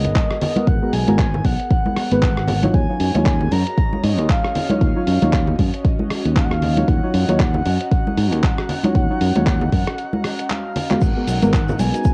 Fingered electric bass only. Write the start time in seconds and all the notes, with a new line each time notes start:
0.05 G#1
0.67 G#1
0.93 B1
1.08 G#1
1.45 B1
2.12 G#1
2.74 D#2
3.00 F#2
3.15 D#2
3.52 F#2
4.04 G#2
4.19 D#2
4.81 D#2
5.07 F#2
5.22 D#2
5.59 F#2
6.25 D#2
6.88 D#2
7.14 F#2
7.29 D#2
7.66 F#2
8.17 G#2
8.32 D#2
8.95 D#2
9.21 F#2
9.36 D#2
9.72 F#2
11.02 G#1
11.28 B1
11.43 G#1
11.79 B1